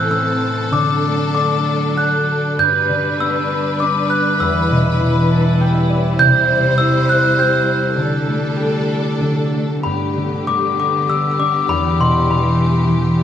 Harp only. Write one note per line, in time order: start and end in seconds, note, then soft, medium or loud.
0.00 0.77 A2 medium
0.00 0.77 E3 medium
0.00 1.03 A3 medium
0.00 0.92 E4 medium
0.10 3.10 C4 medium
0.71 2.63 D3 medium
1.03 4.36 A3 medium
1.34 3.80 D4 soft
1.95 2.64 F#4 medium
2.58 4.45 G2 medium
2.89 4.45 D3 soft
3.19 6.24 B3 medium
3.80 6.60 D4 medium
4.40 6.24 E2 medium
4.70 6.24 B2 medium
5.01 6.24 E3 medium
5.31 6.76 A5 medium
5.60 6.24 G3 medium
5.60 7.16 G5 medium
5.74 7.47 E5 medium
5.90 7.74 D5 medium
6.18 8.02 C3 medium
6.48 8.02 G3 medium
6.79 9.40 E4 medium
7.38 8.56 G4 medium
7.97 9.20 D3 medium
8.27 9.53 A3 soft
8.57 10.92 G4 medium
9.21 9.89 D3 medium
9.53 12.86 A3 soft
9.85 11.74 G2 medium
10.16 11.74 D3 soft
10.47 11.07 G3 medium
10.78 13.17 B3 soft
11.08 11.74 G3 medium
11.39 13.23 D4 medium
11.68 13.23 E2 medium
11.98 13.23 B2 medium
12.29 12.86 E3 medium
12.58 13.23 G3 soft
12.88 13.23 E3 medium
13.18 13.23 B3 soft